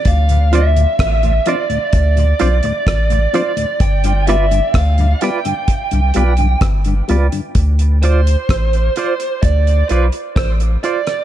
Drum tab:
HH |xxxxxxxxxxxxxxxx|xxxxxxxxxxxxxxxx|xxxxxxxxxxxxxxxx|
SD |----r-------r---|----r-------r---|----r-------r--r|
BD |o---o---o---o---|o---o---o---o---|o---o---o---o---|